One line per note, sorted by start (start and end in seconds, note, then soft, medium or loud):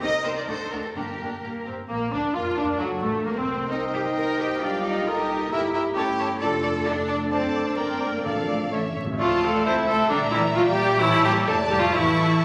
0.02 0.10 C2 medium
0.02 0.10 C4 medium
0.02 0.10 D#4 medium
0.02 0.11 G4 medium
0.02 0.48 A#4 medium
0.02 0.24 D#5 medium
0.24 0.32 C2 medium
0.24 0.33 C4 soft
0.24 0.33 D#4 soft
0.24 0.32 G4 soft
0.24 0.36 C5 medium
0.36 0.41 D5 medium
0.47 0.55 D2 medium
0.47 0.57 A3 soft
0.47 0.56 D4 soft
0.47 0.56 F#4 soft
0.47 0.95 A4 medium
0.47 0.71 C5 medium
0.70 0.79 D2 medium
0.70 0.80 A3 soft
0.70 0.80 D4 soft
0.70 0.79 F#4 soft
0.70 0.75 A#4 medium
0.84 0.88 A4 medium
0.94 1.62 G2 medium
0.94 1.03 G2 soft
0.94 1.04 A#3 soft
0.94 1.04 D4 soft
0.94 1.42 G4 medium
0.94 1.04 G4 soft
0.94 1.64 A#4 soft
1.19 1.27 G2 soft
1.19 1.28 A#3 soft
1.19 1.29 D4 soft
1.19 1.27 G4 soft
1.42 1.50 G2 soft
1.42 1.65 A#3 soft
1.42 1.51 G4 soft
1.65 1.73 G2 soft
1.65 1.74 C4 soft
1.65 1.74 G4 soft
1.88 2.11 A#1 medium
1.88 2.14 A#3 medium
1.88 2.11 A#3 medium
1.88 1.95 A#4 medium
2.11 2.20 D2 medium
2.11 2.35 D4 medium
2.11 2.34 D4 medium
2.11 2.35 D4 medium
2.11 2.21 D4 medium
2.11 2.37 D4 medium
2.34 2.57 F2 medium
2.34 2.57 F4 medium
2.34 2.58 F4 medium
2.34 2.42 F4 medium
2.34 2.58 F4 medium
2.34 2.57 F4 medium
2.34 2.60 F4 medium
2.34 2.58 F4 medium
2.34 2.82 A#4 medium
2.56 2.65 D2 medium
2.56 2.66 D4 medium
2.56 2.64 D4 medium
2.56 2.80 D4 medium
2.56 2.79 D4 medium
2.56 2.66 D4 medium
2.56 2.80 D4 medium
2.56 2.81 D4 medium
2.79 3.02 F#1 medium
2.79 2.90 F#3 medium
2.79 3.03 F#3 medium
2.79 2.87 F#4 medium
2.79 3.03 F#4 medium
2.79 3.06 F#4 medium
2.79 3.27 A4 medium
3.02 3.10 A1 medium
3.02 3.25 A3 medium
3.02 3.13 A3 medium
3.02 3.25 A3 medium
3.02 3.26 A3 medium
3.02 3.27 A4 medium
3.24 3.29 A#1 medium
3.24 3.37 A#3 medium
3.24 3.30 A#3 medium
3.24 3.37 A#3 medium
3.24 3.31 A#3 medium
3.24 3.37 A#3 medium
3.24 3.36 A#4 medium
3.24 3.71 A#4 medium
3.35 3.70 C2 medium
3.35 3.70 C4 medium
3.35 3.71 C4 medium
3.70 4.58 C2 medium
3.70 4.58 A#3 medium
3.70 4.58 D#4 medium
3.70 3.79 D#4 medium
3.70 4.58 A#4 medium
3.70 4.61 C5 medium
3.70 4.58 D#5 medium
3.70 4.66 D#5 medium
3.70 5.48 G5 medium
3.70 5.04 G5 medium
3.94 4.01 G4 medium
4.17 4.39 A#4 medium
4.39 4.62 G4 medium
4.60 5.08 B1 medium
4.60 5.03 G3 medium
4.60 4.85 D4 medium
4.60 5.03 F4 medium
4.60 5.09 G4 medium
4.60 5.04 D5 medium
4.60 5.05 F5 medium
4.64 5.10 F5 medium
4.84 5.06 D#4 medium
5.05 5.52 C2 medium
5.05 5.48 A#3 medium
5.05 5.48 D#4 medium
5.05 5.18 F4 medium
5.05 5.54 A4 medium
5.05 5.49 A#4 medium
5.05 5.49 D#5 medium
5.05 5.52 D#5 medium
5.05 5.31 A#5 medium
5.18 5.51 G4 medium
5.50 5.92 G1 medium
5.50 5.93 A#3 medium
5.50 5.93 E4 medium
5.50 5.73 E4 medium
5.50 5.97 G4 medium
5.50 5.60 A#4 medium
5.50 5.60 E5 medium
5.50 5.62 E5 medium
5.50 5.61 G5 medium
5.50 5.57 A#5 medium
5.73 5.82 E4 medium
5.73 5.83 A#4 medium
5.73 5.83 E5 medium
5.73 5.85 E5 medium
5.73 5.82 G5 medium
5.73 5.79 A#5 soft
5.95 6.37 G1 medium
5.95 7.73 A3 medium
5.95 6.41 C#4 medium
5.95 6.43 E4 medium
5.95 6.41 G4 loud
5.95 6.05 A4 medium
5.95 6.07 C#5 medium
5.95 6.05 C#5 medium
5.95 6.02 A5 medium
5.95 6.05 A5 medium
6.18 6.28 A4 medium
6.18 6.29 C#5 medium
6.18 6.28 C#5 medium
6.18 6.26 A5 medium
6.41 6.82 F1 medium
6.41 8.23 D4 medium
6.41 6.89 F4 medium
6.41 6.85 A4 loud
6.41 6.50 A4 medium
6.41 6.49 D5 medium
6.41 6.52 D5 medium
6.41 6.49 A5 medium
6.41 6.48 A5 medium
6.63 6.73 A4 medium
6.63 6.71 D5 medium
6.63 6.73 D5 medium
6.63 6.71 A5 medium
6.63 6.70 A5 medium
6.85 7.27 F1 medium
6.85 7.31 D4 loud
6.85 6.95 A4 medium
6.85 7.32 A4 medium
6.85 6.96 D5 medium
6.85 6.94 D5 medium
6.85 6.93 A5 medium
7.08 7.18 A4 medium
7.08 7.16 D5 medium
7.08 7.19 D5 medium
7.08 7.16 A5 medium
7.08 7.15 A5 medium
7.31 7.74 F#1 medium
7.31 7.66 C4 medium
7.31 7.75 A4 medium
7.31 7.80 C5 medium
7.31 7.75 D5 medium
7.31 7.42 D5 medium
7.31 7.74 A5 medium
7.31 7.37 A5 medium
7.54 7.66 D5 medium
7.54 7.60 A5 soft
7.67 7.72 D4 medium
7.76 8.24 G1 medium
7.76 8.25 A#3 medium
7.76 8.13 C4 medium
7.76 8.27 A#4 medium
7.76 8.24 A#4 medium
7.76 7.88 D5 medium
7.76 8.23 D5 medium
7.76 8.24 G5 medium
7.76 7.83 A#5 medium
8.00 8.11 D5 medium
8.00 8.06 A#5 medium
8.15 8.19 A#3 medium
8.24 8.71 A1 medium
8.24 8.69 A2 medium
8.24 8.71 F3 medium
8.24 8.72 A3 medium
8.24 8.71 D4 medium
8.24 8.71 A4 medium
8.24 8.68 A4 medium
8.24 8.71 D5 medium
8.24 8.35 D5 medium
8.24 8.71 F5 medium
8.24 8.32 F5 medium
8.49 8.59 D5 soft
8.49 8.55 F5 soft
8.71 8.80 A1 medium
8.71 8.80 A2 soft
8.71 8.95 E3 medium
8.71 8.96 C#4 soft
8.71 8.83 A4 medium
8.71 8.80 A4 soft
8.71 8.83 C#5 medium
8.71 8.99 C#5 medium
8.71 8.78 E5 soft
8.71 8.99 E5 medium
8.81 8.88 A2 soft
8.90 8.95 A2 soft
8.95 9.03 A2 soft
8.95 9.06 C#5 soft
8.95 9.18 E5 medium
8.95 9.02 E5 soft
9.04 9.11 A2 medium
9.12 9.19 A2 medium
9.18 9.63 D2 medium
9.18 9.28 F3 medium
9.18 9.42 F3 medium
9.18 9.41 A3 medium
9.18 9.41 F4 medium
9.18 9.67 D5 medium
9.18 9.63 D5 medium
9.18 9.63 F5 medium
9.18 9.62 A5 medium
9.18 9.63 A5 medium
9.42 9.66 A3 medium
9.42 9.67 A3 medium
9.42 9.64 C4 medium
9.42 9.66 A4 medium
9.64 10.11 C2 medium
9.64 9.89 C4 medium
9.64 9.88 E4 medium
9.64 9.74 C5 medium
9.64 11.01 E5 medium
9.64 10.11 E5 medium
9.64 10.09 A5 medium
9.64 10.13 A5 medium
9.88 10.10 A3 medium
9.88 9.96 A3 medium
9.88 10.10 C4 medium
9.88 10.10 A4 medium
10.10 10.99 A#1 medium
10.10 10.33 D3 medium
10.10 10.20 G3 medium
10.10 10.18 D4 medium
10.10 10.55 D5 medium
10.10 11.03 D5 medium
10.10 10.56 A#5 medium
10.10 11.01 A#5 medium
10.32 10.56 E3 medium
10.32 10.45 E3 medium
10.32 10.44 G3 medium
10.32 10.40 E4 medium
10.54 10.67 F3 medium
10.54 10.62 F3 medium
10.54 10.61 A3 medium
10.54 10.66 F4 medium
10.54 11.00 D5 medium
10.54 11.02 G5 medium
10.66 11.00 G3 medium
10.66 11.01 G3 medium
10.66 11.02 A#3 medium
10.66 11.00 G4 loud
11.00 11.47 A1 medium
11.00 11.23 E3 loud
11.00 11.23 E3 medium
11.00 11.26 A3 loud
11.00 11.23 E4 loud
11.00 11.47 C#5 medium
11.00 11.46 C#5 medium
11.00 11.45 A5 medium
11.00 11.46 A5 medium
11.23 11.31 G3 medium
11.23 11.47 G3 medium
11.23 11.47 A#3 loud
11.23 11.31 G4 loud
11.46 11.93 F1 medium
11.46 11.69 A3 medium
11.46 11.70 A3 medium
11.46 11.58 D4 medium
11.46 11.54 A4 loud
11.46 11.96 D5 medium
11.46 11.94 D5 medium
11.46 11.92 A5 medium
11.46 11.93 A5 medium
11.68 11.81 G3 medium
11.68 11.76 A#3 medium
11.68 11.81 G4 medium
11.80 11.93 F3 medium
11.80 11.87 A3 medium
11.80 11.93 F4 loud
11.92 12.39 A1 medium
11.92 12.39 E3 medium
11.92 12.41 E3 medium
11.92 12.39 A3 medium
11.92 12.40 E4 loud
11.92 12.45 E5 medium
11.92 12.45 A5 medium
11.92 12.45 C#6 medium
12.40 12.45 F1 medium